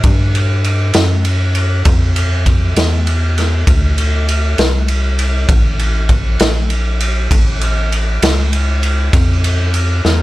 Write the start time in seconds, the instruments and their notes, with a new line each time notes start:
0.04 analog synth bass G2, kick, ride
0.35 ride
0.64 ride
0.94 analog synth bass F#2, snare, ride
1.25 ride
1.55 ride
1.85 analog synth bass F2, kick, ride
2.16 ride
2.46 kick, ride
2.76 analog synth bass E2, snare, ride
3.07 ride
3.38 snare, ride
3.67 analog synth bass D2, kick, ride
3.98 ride
4.29 ride
4.58 analog synth bass C2, snare, ride
4.88 ride
5.19 ride
5.49 analog synth bass A1, kick, ride
5.79 ride
6.09 kick, ride
6.40 analog synth bass A#1, snare, ride
6.70 ride
7.00 ride
7.31 analog synth bass A1, kick, ride
7.61 ride
7.92 ride
8.22 analog synth bass C#2, snare, ride
8.53 ride
8.83 ride
9.13 analog synth bass F2, kick, ride
9.44 ride
9.74 ride
10.05 analog synth bass E2, snare